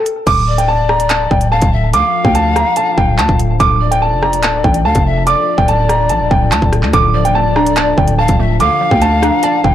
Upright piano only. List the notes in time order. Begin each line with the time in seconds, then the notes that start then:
0.27 D6
0.58 G5
0.68 A5
0.89 A#5
1.10 A5
1.31 G5
1.52 A5
1.94 D6
2.25 G5
2.35 A5
2.56 A#5
2.77 A5
2.98 G5
3.19 A5
3.60 D6
3.91 G5
4.02 A5
4.22 A#5
4.43 A5
4.64 G5
4.85 A5
5.27 D6
5.58 G5
5.68 A5
5.89 A#5
6.10 A5
6.31 G5
6.51 A5
6.94 D6
7.25 G5
7.35 A5
7.56 A#5
7.77 A5
7.98 G5
8.18 A5
8.60 D6
8.91 G5
9.02 A5
9.23 A#5
9.43 A5
9.64 G5